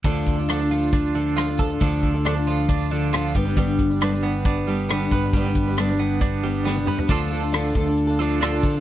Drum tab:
HH |x-x-x-x-x-x-x-x-|x-x-x-x-x-x-x-x-|x-x-x-x-x-x-x-x-|x-x-x-x-x-x-----|
SD |----r-------r---|----r-------r---|----r-------r---|----r-------o---|
T1 |----------------|----------------|----------------|-------------o--|
T2 |----------------|----------------|----------------|--------------o-|
FT |----------------|----------------|----------------|---------------o|
BD |o-o-----o-----o-|o-o-----o-----o-|o-o-----o-----o-|o-o-----o-------|

HH |x---x---x---x---|
SD |----r-------r---|
T1 |----------------|
T2 |----------------|
FT |----------------|
BD |o-----o-------o-|